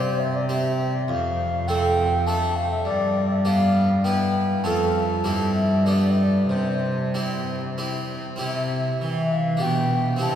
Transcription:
Already playing: harpsichord C3 C4 G4, cello C3, flute C5
0.19 flute E5
0.34 flute D5
0.49 harpsichord C4 G4, flute E5
1.08 harpsichord F2, cello F2, flute F5
1.68 harpsichord A3 C4 A4, flute G5
2.27 harpsichord A3 D4 A4, flute A5
2.56 flute F5
2.71 flute E5
2.85 harpsichord G2, cello G2, flute D5
3.31 flute E5
3.45 harpsichord B3 D4 G4, flute F5
4.04 harpsichord B3 E4 B4, flute G5
4.64 cello F2, harpsichord F2 C4 F4 A4, flute A5
5.24 cello G2, harpsichord G2 C4 E4 G4
5.55 flute E5
5.85 harpsichord B3 D4 G4, flute D5
5.93 flute E5
6.02 flute D5
6.11 flute E5
6.19 flute D5
6.49 cello C3, harpsichord C3, flute C5
7.14 harpsichord C4 E4 G4
7.78 harpsichord C4 E4 G4
8.36 harpsichord C4 E4 G4
8.41 harpsichord C3, cello C3, flute E5
9.02 harpsichord E3, cello E3
9.32 flute F5
9.57 harpsichord D4 G4
9.62 harpsichord B2, cello B2, flute G5
10.16 harpsichord C4 E4 G4
10.21 harpsichord C3, cello C3, flute A5

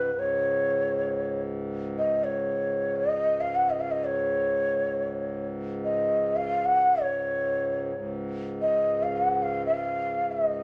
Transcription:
Already playing: harmonium G#2, bansuri B4
0.11 harmonium C#2 G#2
0.19 bansuri C#5
1.99 bansuri D#5
2.24 bansuri C#5
2.96 bansuri D#5
3.40 bansuri F5
3.55 bansuri F#5
3.70 bansuri D#5
3.81 bansuri F5
3.91 bansuri D#5
4.05 bansuri C#5
5.85 bansuri D#5
6.36 bansuri F5
6.65 bansuri F#5
7.02 bansuri C#5
7.93 harmonium C#2 G#2
8.62 bansuri D#5
9.03 bansuri F5
9.16 bansuri F#5
9.43 bansuri F5
9.66 bansuri F5
10.32 bansuri E5
10.47 bansuri D#5

